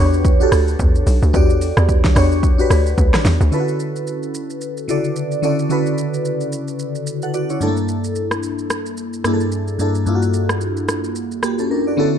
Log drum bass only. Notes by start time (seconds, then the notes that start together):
Already playing: E2
0.52 D2
0.79 E2
1.07 B1
1.22 D2
1.34 E2
1.77 E2
2.16 E2
2.70 D2
2.98 D2
3.25 E2
3.41 D2